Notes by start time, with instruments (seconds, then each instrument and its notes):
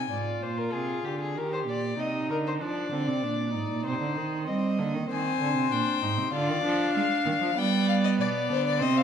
Already playing: cello C3, violin G#5
0.10 cello G#2, viola F4, violin D5
0.42 cello A#2, violin C5
0.58 violin A#4
0.73 cello C3, violin G#4
1.04 cello D3, violin G4
1.20 violin G#4
1.35 cello D#3, viola G4, violin A#4
1.53 violin C5
1.66 cello A#2, violin D5
1.98 cello C3, viola D#4, violin D#5
2.29 cello D3, violin A#4
2.47 violin C5
2.60 cello F3, viola D4, violin D5
2.92 cello D3, viola C4
3.08 cello C3
3.23 cello A#2, viola D4
3.54 cello G#2, viola D#4
3.70 cello A#2
3.85 cello C3, violin C5
4.01 cello D3
4.16 cello D#3
4.47 cello G3, viola C4, violin D#5
4.79 cello D3, viola A#3
4.94 cello D#3
5.09 cello D#3, viola C4, violin C5 G#5
5.40 cello D3
5.56 cello C3
5.71 cello A#2, viola D4, violin G5
6.02 cello G#2, viola D#4
6.17 cello C3
6.32 cello D3, viola F4, violin D5 F5
6.49 cello D#3
6.64 cello F3, viola D4
6.95 cello G#3, violin F5
7.26 cello D#3
7.41 cello F3
7.57 cello G3, viola B3, violin D5 G5
7.89 violin F5
8.04 violin D#5
8.19 cello B2, violin D5
8.49 cello D3, violin C5
8.68 violin D5
8.80 cello C3, viola C4, violin C5 D#5
8.98 violin F5